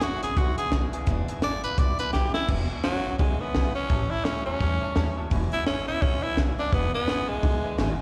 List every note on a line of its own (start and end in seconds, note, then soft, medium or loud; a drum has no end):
0.01 0.18 G#1 medium
0.01 0.20 E2 medium
0.01 0.23 E2 medium
0.01 0.23 B2 medium
0.01 0.20 C#3 loud
0.01 0.23 E3 medium
0.01 0.23 G#3 medium
0.01 0.22 D4 medium
0.01 0.22 E4 medium
0.01 0.23 F#4 loud
0.01 0.15 B4 medium
0.01 0.15 E5 medium
0.01 0.15 F#5 medium
0.01 snare loud
0.01 closed hi-hat medium
0.22 0.34 B1 medium
0.22 0.35 E2 medium
0.22 0.35 C#3 medium
0.22 0.35 E3 soft
0.22 0.36 G#3 medium
0.22 0.37 D4 medium
0.22 0.37 E4 medium
0.22 0.39 G#4 loud
0.22 0.31 B4 medium
0.22 0.31 E5 medium
0.22 0.31 B5 medium
0.22 closed hi-hat medium
0.36 0.53 B1 loud
0.36 0.56 E2 medium
0.36 0.56 D3 loud
0.36 0.58 E3 medium
0.36 0.58 G#3 medium
0.36 0.57 D4 medium
0.36 0.56 E4 medium
0.36 0.57 F#4 medium
0.36 0.50 B4 medium
0.36 0.50 E5 medium
0.36 0.50 F#5 medium
0.36 kick loud
0.36 closed hi-hat medium
0.57 0.70 E2 medium
0.57 0.71 D3 medium
0.57 0.71 E3 soft
0.57 0.72 G#3 soft
0.57 0.72 D4 soft
0.57 0.72 E4 soft
0.57 0.72 G#4 loud
0.57 0.66 B4 medium
0.57 0.66 E5 medium
0.57 0.66 G#5 loud
0.57 muted upright bass stroke medium
0.57 closed hi-hat medium
0.72 0.88 B1 loud
0.72 0.91 E2 medium
0.72 0.93 E2 medium
0.72 0.94 B2 medium
0.72 0.91 C#3 loud
0.72 0.94 E3 medium
0.72 0.93 G#3 medium
0.72 0.92 D4 medium
0.72 0.91 E4 medium
0.72 0.85 B4 loud
0.72 0.85 E5 medium
0.72 0.85 G#5 loud
0.72 snare loud
0.72 closed hi-hat medium
0.92 1.06 E2 medium
0.92 1.06 C#3 medium
0.92 1.06 E3 soft
0.92 1.06 G#3 medium
0.92 1.06 D4 medium
0.92 1.06 E4 medium
0.92 1.02 B4 loud
0.92 1.02 E5 medium
0.92 1.02 G#5 loud
0.92 muted upright bass stroke medium
0.92 closed hi-hat medium
1.06 1.24 E1 loud
1.06 1.28 E2 medium
1.06 1.26 E2 medium
1.06 1.28 B2 medium
1.06 1.27 B2 loud
1.06 1.29 E3 loud
1.06 1.29 G#3 medium
1.06 1.28 D4 loud
1.06 1.27 E4 medium
1.06 1.20 B4 loud
1.06 1.20 E5 loud
1.06 1.21 G#5 loud
1.06 kick loud
1.06 closed hi-hat medium
1.28 1.41 E2 medium
1.28 1.42 B2 medium
1.28 1.43 E3 soft
1.28 1.43 G#3 medium
1.28 1.43 D4 medium
1.28 1.43 E4 medium
1.28 1.37 B4 medium
1.28 1.37 E5 medium
1.28 1.37 G#5 medium
1.28 muted upright bass stroke medium
1.28 closed hi-hat medium
1.42 1.59 G#1 medium
1.42 1.62 E2 medium
1.42 1.64 E2 medium
1.42 1.64 B2 medium
1.42 1.62 C#3 medium
1.42 1.65 E3 medium
1.42 1.65 G#3 medium
1.42 1.64 D4 medium
1.42 1.62 E4 medium
1.42 1.63 D5 loud
1.42 1.56 G#5 medium
1.42 snare loud
1.42 closed hi-hat medium
1.64 1.75 B1 medium
1.64 1.77 E2 medium
1.64 1.77 C#3 medium
1.64 1.76 E3 soft
1.64 1.77 G#3 soft
1.64 1.78 D4 soft
1.64 1.78 E4 medium
1.64 1.80 B4 medium
1.64 1.73 E5 medium
1.64 closed hi-hat medium
1.77 1.95 B1 loud
1.77 1.97 E2 medium
1.77 1.98 D3 medium
1.77 1.99 E3 medium
1.77 1.99 G#3 medium
1.77 1.98 D4 medium
1.77 1.98 E4 medium
1.77 1.91 B4 medium
1.77 1.99 D5 medium
1.77 1.91 E5 medium
1.77 1.91 G#5 medium
1.77 kick loud
1.77 closed hi-hat medium
1.99 2.12 E2 medium
1.99 2.12 D3 medium
1.99 2.13 E3 soft
1.99 2.13 G#3 soft
1.99 2.14 D4 soft
1.99 2.13 E4 medium
1.99 2.12 B4 medium
1.99 2.08 B4 medium
1.99 2.08 E5 medium
1.99 2.08 G#5 loud
1.99 muted upright bass stroke medium
1.99 closed hi-hat medium
2.13 2.30 B1 medium
2.13 2.32 E2 medium
2.13 2.35 E2 medium
2.13 2.35 B2 medium
2.13 2.33 C#3 medium
2.13 2.35 E3 medium
2.13 2.35 G#3 medium
2.13 2.34 D4 medium
2.13 2.33 E4 medium
2.13 2.33 G4 loud
2.13 2.27 B4 medium
2.13 2.27 E5 medium
2.13 2.27 G#5 loud
2.13 snare medium
2.34 2.47 E2 medium
2.34 2.48 C#3 medium
2.34 2.47 E3 soft
2.34 2.47 G#3 soft
2.34 2.48 D4 soft
2.34 2.48 E4 medium
2.34 2.48 E4 loud
2.34 2.43 B4 medium
2.34 2.44 G#5 medium
2.34 muted upright bass stroke medium
2.34 snare medium
2.47 2.65 E1 loud
2.47 2.69 E2 medium
2.47 2.68 E2 medium
2.47 2.70 B2 medium
2.47 2.69 B2 medium
2.47 2.70 E3 medium
2.47 2.69 G#3 medium
2.47 2.69 D4 medium
2.47 2.68 E4 medium
2.47 2.62 B4 medium
2.47 2.62 E5 medium
2.47 2.62 G#5 loud
2.47 kick loud
2.47 crash loud
2.69 2.83 E2 medium
2.69 2.83 B2 medium
2.69 2.83 E3 soft
2.69 2.83 G#3 medium
2.69 2.84 D4 medium
2.69 2.84 E4 medium
2.69 2.79 B4 medium
2.69 2.79 E5 medium
2.69 2.79 G#5 loud
2.69 muted upright bass stroke medium
2.83 3.01 G#1 medium
2.83 3.05 E2 medium
2.83 3.03 E2 medium
2.83 3.05 B2 medium
2.83 3.04 C#3 medium
2.83 3.05 E3 medium
2.83 3.18 F#3 loud
2.83 3.05 G#3 medium
2.83 3.05 D4 medium
2.83 3.04 E4 medium
2.83 2.97 E5 medium
2.83 2.97 G#5 medium
2.83 snare loud
2.83 open hi-hat soft
3.05 3.16 B1 medium
3.05 3.18 E2 medium
3.05 3.19 C#3 medium
3.05 3.17 E3 soft
3.05 3.18 G#3 soft
3.05 3.19 D4 soft
3.05 3.19 E4 medium
3.05 3.14 B4 medium
3.05 3.14 E5 medium
3.05 3.14 F#5 medium
3.18 3.36 B1 loud
3.18 3.38 E2 medium
3.18 3.39 D3 medium
3.18 3.40 E3 medium
3.18 3.42 G#3 medium
3.18 3.41 G#3 medium
3.18 3.40 D4 medium
3.18 3.39 E4 medium
3.18 3.32 B4 medium
3.18 3.33 G#5 medium
3.18 kick loud
3.18 open hi-hat soft
3.40 3.53 E2 medium
3.40 3.54 D3 medium
3.40 3.54 E3 soft
3.40 3.54 G#3 soft
3.40 3.74 B3 medium
3.40 3.55 D4 soft
3.40 3.55 E4 soft
3.40 3.49 B4 medium
3.40 3.49 E5 medium
3.40 3.49 G#5 loud
3.40 muted upright bass stroke medium
3.54 3.71 B1 loud
3.54 3.76 E2 medium
3.54 3.74 E2 medium
3.54 3.76 B2 medium
3.54 3.74 C#3 loud
3.54 3.76 E3 medium
3.54 3.76 G#3 medium
3.54 3.76 D4 medium
3.54 3.75 E4 medium
3.54 3.67 B4 medium
3.54 3.67 E5 medium
3.54 3.68 G#5 loud
3.54 snare loud
3.54 open hi-hat medium
3.75 3.89 E2 medium
3.75 3.89 C#3 medium
3.75 3.89 E3 soft
3.75 3.90 G#3 medium
3.75 4.12 C#4 medium
3.75 3.91 D4 soft
3.75 3.90 E4 medium
3.75 3.85 B4 medium
3.75 3.85 E5 medium
3.75 muted upright bass stroke medium
3.89 4.06 A1 loud
3.89 4.09 A2 medium
3.89 4.11 A2 medium
3.89 4.09 E3 loud
3.89 4.11 E3 medium
3.89 4.12 G3 medium
3.89 4.11 C#4 medium
3.89 4.10 E4 medium
3.89 4.03 C#5 medium
3.89 4.03 E5 medium
3.89 4.03 A5 loud
3.89 kick loud
3.89 open hi-hat medium
4.10 4.24 A2 medium
4.10 4.24 E3 medium
4.10 4.25 G3 soft
4.10 4.25 C#4 soft
4.10 4.26 E4 medium
4.10 4.25 E4 medium
4.10 4.20 C#5 medium
4.10 4.20 E5 medium
4.10 4.20 A5 medium
4.10 muted upright bass stroke medium
4.25 4.42 C#2 medium
4.25 4.44 A2 medium
4.25 4.46 A2 medium
4.25 4.47 E3 medium
4.25 4.45 F#3 loud
4.25 4.47 G3 medium
4.25 4.45 C#4 loud
4.25 4.46 C#4 loud
4.25 4.45 E4 medium
4.25 4.39 C#5 medium
4.25 4.38 E5 medium
4.25 4.39 B5 medium
4.25 snare loud
4.25 open hi-hat medium
4.46 4.58 E2 medium
4.46 4.59 A2 medium
4.46 4.60 F#3 medium
4.46 4.59 G3 soft
4.46 5.15 C#4 loud
4.46 4.60 C#4 soft
4.46 4.60 E4 medium
4.46 4.56 C#5 medium
4.46 4.56 E5 medium
4.46 4.56 A5 medium
4.60 4.77 E2 loud
4.60 4.80 A2 medium
4.60 4.82 G3 medium
4.60 4.80 G3 loud
4.60 4.82 C#4 medium
4.60 4.80 E4 medium
4.60 4.74 E5 medium
4.60 4.74 A5 medium
4.60 kick loud
4.60 open hi-hat medium
4.81 4.95 A2 medium
4.81 4.95 G3 medium
4.81 4.95 G3 soft
4.81 4.95 C#4 soft
4.81 4.96 E4 medium
4.81 4.91 C#5 medium
4.81 4.90 E5 medium
4.81 4.91 A5 loud
4.81 muted upright bass stroke medium
4.95 5.12 D#2 loud
4.95 5.17 A2 medium
4.95 5.15 A2 medium
4.95 5.17 E3 loud
4.95 5.16 F#3 medium
4.95 5.18 G3 medium
4.95 5.17 C#4 loud
4.95 5.16 E4 medium
4.95 5.09 C#5 loud
4.95 5.09 E5 loud
4.95 5.09 A5 loud
4.95 snare loud
4.95 open hi-hat medium
5.17 5.30 A2 medium
5.17 5.30 F#3 medium
5.17 5.31 G3 medium
5.17 5.31 C#4 medium
5.17 5.31 E4 medium
5.17 5.26 C#5 medium
5.17 5.26 E5 medium
5.17 5.26 A5 loud
5.17 muted upright bass stroke medium
5.30 5.48 E1 loud
5.30 5.52 E2 medium
5.30 5.51 E2 medium
5.30 5.52 B2 medium
5.30 5.51 B2 loud
5.30 5.53 E3 medium
5.30 5.52 G#3 medium
5.30 5.51 D4 loud
5.30 5.50 E4 medium
5.30 5.44 B4 loud
5.30 5.44 E5 loud
5.30 5.44 G#5 loud
5.30 kick loud
5.30 open hi-hat medium
5.51 5.65 E2 medium
5.51 5.66 B2 medium
5.51 5.65 E3 soft
5.51 5.66 G#3 medium
5.51 5.66 D4 soft
5.51 5.66 E4 medium
5.51 5.66 E4 loud
5.51 5.61 B4 medium
5.51 5.62 E5 medium
5.51 5.62 G#5 medium
5.51 muted upright bass stroke medium
5.66 5.83 G#1 medium
5.66 5.86 E2 medium
5.66 5.88 E2 medium
5.66 5.88 B2 medium
5.66 5.86 C#3 loud
5.66 5.88 E3 medium
5.66 5.88 G#3 medium
5.66 5.87 C#4 loud
5.66 5.86 D4 medium
5.66 5.86 E4 medium
5.66 5.80 B4 medium
5.66 5.80 E5 medium
5.66 snare loud
5.66 open hi-hat medium
5.87 5.99 B1 medium
5.87 6.01 E2 medium
5.87 6.01 C#3 medium
5.87 6.00 E3 soft
5.87 6.00 G#3 medium
5.87 6.02 D4 medium
5.87 6.02 E4 medium
5.87 6.03 E4 loud
5.87 5.97 B4 medium
5.87 5.97 E5 medium
5.87 5.97 G#5 medium
6.01 6.19 B1 medium
6.01 6.21 E2 medium
6.01 6.22 D3 loud
6.01 6.23 E3 medium
6.01 6.23 G#3 medium
6.01 6.25 C#4 medium
6.01 6.22 D4 medium
6.01 6.21 E4 medium
6.01 6.15 B4 medium
6.01 6.15 E5 medium
6.01 6.15 G#5 medium
6.01 kick loud
6.01 open hi-hat medium
6.22 6.36 E2 medium
6.22 6.37 D3 medium
6.22 6.36 E3 soft
6.22 6.36 G#3 soft
6.22 6.36 D4 soft
6.22 6.37 E4 medium
6.22 6.37 E4 loud
6.22 6.32 B4 medium
6.22 6.32 E5 medium
6.22 6.32 G#5 loud
6.22 muted upright bass stroke medium
6.36 6.54 B1 medium
6.36 6.58 E2 medium
6.36 6.57 E2 medium
6.36 6.59 B2 medium
6.36 6.57 C#3 loud
6.36 6.58 E3 medium
6.36 6.58 G#3 medium
6.36 6.57 D4 medium
6.36 6.56 E4 medium
6.36 6.51 B4 medium
6.36 6.51 E5 medium
6.36 6.51 G#5 loud
6.36 snare loud
6.36 open hi-hat soft
6.57 6.71 E2 medium
6.57 6.72 C#3 medium
6.57 6.71 E3 soft
6.57 6.72 G#3 soft
6.57 6.72 D4 medium
6.57 6.75 D4 medium
6.57 6.72 E4 medium
6.57 6.67 B4 medium
6.57 6.67 E5 medium
6.57 6.68 G#5 medium
6.57 muted upright bass stroke medium
6.72 6.89 E1 loud
6.72 6.94 E2 medium
6.72 6.92 E2 medium
6.72 6.94 B2 medium
6.72 6.92 B2 loud
6.72 6.94 E3 medium
6.72 6.94 G#3 medium
6.72 6.93 B3 loud
6.72 6.93 D4 medium
6.72 6.93 E4 medium
6.72 6.86 B4 medium
6.72 6.86 E5 medium
6.72 6.86 G#5 loud
6.72 kick loud
6.72 open hi-hat medium
6.93 7.06 E2 medium
6.93 7.07 B2 medium
6.93 7.07 E3 soft
6.93 7.07 G#3 medium
6.93 7.30 B3 loud
6.93 7.08 D4 medium
6.93 7.08 E4 medium
6.93 7.02 B4 medium
6.93 7.02 E5 medium
6.93 7.03 G#5 medium
6.93 muted upright bass stroke medium
7.07 7.24 G#1 medium
7.07 7.29 E2 medium
7.07 7.27 E2 medium
7.07 7.29 B2 medium
7.07 7.27 C#3 medium
7.07 7.29 E3 medium
7.07 7.29 G#3 medium
7.07 7.28 D4 medium
7.07 7.28 E4 medium
7.07 7.21 B4 medium
7.07 7.21 G#5 medium
7.07 snare loud
7.07 open hi-hat medium
7.29 7.40 B1 medium
7.29 7.41 E2 medium
7.29 7.42 C#3 medium
7.29 7.42 E3 soft
7.29 7.98 G#3 loud
7.29 7.43 G#3 soft
7.29 7.44 D4 soft
7.29 7.43 E4 medium
7.29 7.38 B4 medium
7.29 7.38 E5 medium
7.29 7.38 G#5 medium
7.42 7.60 B1 medium
7.42 7.62 E2 medium
7.42 7.62 D3 loud
7.42 7.64 E3 medium
7.42 7.65 G#3 medium
7.42 7.64 D4 medium
7.42 7.63 E4 medium
7.42 7.56 B4 medium
7.42 7.56 E5 medium
7.42 7.56 G#5 medium
7.42 kick loud
7.42 open hi-hat soft
7.64 7.77 E2 medium
7.64 7.77 D3 medium
7.64 7.77 E3 soft
7.64 7.77 G#3 soft
7.64 7.78 D4 medium
7.64 7.78 E4 medium
7.64 7.73 B4 loud
7.64 7.73 E5 medium
7.64 7.73 G#5 loud
7.64 muted upright bass stroke medium
7.78 7.95 G#1 medium
7.78 7.99 E2 medium
7.78 7.97 E2 medium
7.78 8.00 B2 medium
7.78 7.98 C#3 medium
7.78 8.00 E3 medium
7.78 8.00 G#3 medium
7.78 7.99 D4 loud
7.78 7.98 E4 loud
7.78 7.91 B4 loud
7.78 7.91 E5 loud
7.78 7.91 G#5 loud
7.78 snare loud
7.78 open hi-hat medium